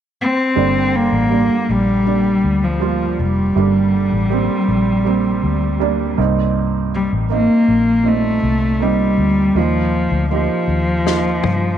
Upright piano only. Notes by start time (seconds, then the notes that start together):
0.55 G2 D3 G3 A#3 D4
1.30 G3 A#3 D4
2.05 G3 A#3 D4
2.79 G3 A#3 F4
3.56 G2 D3 G3 A#3 D4
4.30 G3 A#3 C4
5.04 G3 A#3 C4
5.80 G3 A#3 D4
6.17 G2 A#3 C4 D#4
7.30 A#3 C4 D#4
8.03 A#2 C4 D#4
8.80 A#3 C4 D#4
9.55 A#2 A#3 D#4 F4
10.31 A#3 D#4 G4
11.05 A#3 D#4 F4